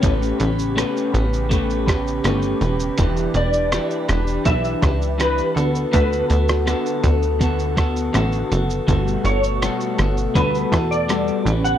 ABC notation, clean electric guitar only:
X:1
M:4/4
L:1/8
Q:1/4=81
K:D
V:1 name="Clean electric guitar"
[A,CGB] [CGB] [A,CGB] [CGB] [A,CGB] [CGB] [A,CGB] [CGB] | [E,DGB] [DGB] [E,DGB] [DGB] [E,DGB] [DGB] [E,DGB] [B,FA] | [D,B,FA] [B,FA] [D,B,FA] [B,FA] [D,B,FA] [B,FA] [D,B,FA] [B,FA] | [G,B,FA] [B,FA] [G,B,FA] [B,FA] [G,B,FA] [B,FA] [G,B,FA] [CGB] |]